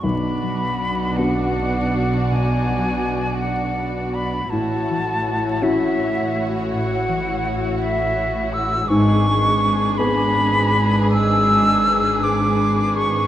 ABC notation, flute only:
X:1
M:6/8
L:1/8
Q:3/8=54
K:Bdor
V:1 name="Flute"
b3 f3 | g3 f2 b | a3 e2 z | f3 e2 e' |
c'3 b3 | e'3 d'2 c' |]